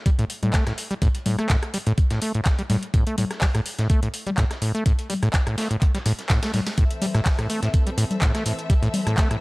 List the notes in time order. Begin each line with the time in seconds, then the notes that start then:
0.06 G3, kick, closed hi-hat, tambourine
0.19 A2, closed hi-hat
0.30 open hi-hat, tambourine
0.43 A2, closed hi-hat, low conga
0.53 A3, kick, snare, clap, closed hi-hat, tambourine
0.67 A2, cross-stick, snare, closed hi-hat
0.78 open hi-hat, tambourine
0.91 G3, closed hi-hat
1.02 A2, kick, closed hi-hat, tambourine
1.15 closed hi-hat
1.26 A2, open hi-hat, tambourine, low conga
1.39 A3, cross-stick, closed hi-hat
1.49 A2, kick, snare, clap, closed hi-hat, tambourine
1.63 cross-stick, closed hi-hat
1.74 G3, open hi-hat, tambourine
1.87 A2, closed hi-hat
1.98 kick, closed hi-hat, tambourine
2.10 A2, snare, closed hi-hat
2.22 A3, open hi-hat, tambourine
2.35 A2, closed hi-hat
2.45 kick, snare, clap, closed hi-hat, tambourine
2.59 G3, closed hi-hat
2.70 A2, snare, open hi-hat, tambourine, low conga
2.83 closed hi-hat
2.94 A2, kick, closed hi-hat, tambourine
3.07 A3, closed hi-hat
3.18 A2, open hi-hat, tambourine, low conga
3.31 cross-stick, snare, closed hi-hat
3.41 G3, kick, snare, clap, closed hi-hat, open hi-hat
3.55 A2, cross-stick, closed hi-hat
3.66 open hi-hat, tambourine
3.79 A2, snare, closed hi-hat
3.90 A3, kick, closed hi-hat, tambourine
4.03 A2, closed hi-hat
4.14 open hi-hat, tambourine
4.27 G3, closed hi-hat, low conga
4.37 A2, kick, snare, clap, closed hi-hat, tambourine
4.51 cross-stick, snare, closed hi-hat
4.62 A2, open hi-hat, tambourine
4.75 A3, closed hi-hat
4.86 A2, kick, closed hi-hat, tambourine
4.99 closed hi-hat
5.10 G3, open hi-hat, tambourine, low conga
5.23 A2, cross-stick, closed hi-hat
5.33 kick, snare, clap, closed hi-hat, tambourine
5.47 A2, cross-stick, closed hi-hat
5.58 A3, snare, open hi-hat
5.71 A2, closed hi-hat
5.81 kick, clap, closed hi-hat, tambourine
5.95 G3, snare, closed hi-hat
6.06 A2, snare, open hi-hat, tambourine
6.19 snare, closed hi-hat
6.29 A2, kick, snare, clap, closed hi-hat, open hi-hat
6.43 A3, snare, closed hi-hat, open hi-hat
6.54 A2, snare, open hi-hat, low conga
6.67 snare, closed hi-hat, open hi-hat
6.78 A2 E3 C4 A4 E5, kick, closed hi-hat, tambourine, shaker
6.91 closed hi-hat
7.02 G3, open hi-hat, tambourine, low conga, shaker
7.15 A2, cross-stick, snare, closed hi-hat, shaker
7.25 kick, snare, clap, closed hi-hat, open hi-hat, shaker
7.39 A2, cross-stick, closed hi-hat
7.50 A3, open hi-hat, tambourine, shaker
7.63 A2, snare, closed hi-hat, shaker
7.74 kick, closed hi-hat, tambourine, shaker
7.87 G3, closed hi-hat
7.98 A2, open hi-hat, tambourine, shaker
8.11 closed hi-hat, low conga, shaker
8.21 A2, kick, snare, clap, closed hi-hat, tambourine, shaker
8.35 A3, cross-stick, snare, closed hi-hat
8.46 A2, open hi-hat, tambourine, shaker
8.59 closed hi-hat, shaker
8.70 G3, kick, closed hi-hat, tambourine, shaker
8.83 A2, closed hi-hat
8.94 open hi-hat, tambourine, low conga, shaker
9.07 A2, cross-stick, closed hi-hat, shaker
9.17 A3, kick, snare, clap, closed hi-hat, tambourine, shaker
9.31 A2, cross-stick, closed hi-hat